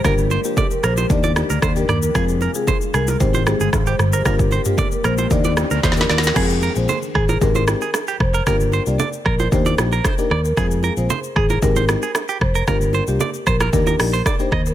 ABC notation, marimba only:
X:1
M:4/4
L:1/16
Q:1/4=114
K:Fdor
V:1 name="Marimba"
B2 z G z B c z d3 z2 B z B | z3 A z2 B z c z A z2 c z c | B2 z G z B c z d3 z2 B z B | A2 z c z2 A z B3 z3 c z |
B2 z d z2 B z c3 z2 B z B | A2 z c z2 A z B3 z3 c z | B2 z G z2 B z B3 z2 c z B |]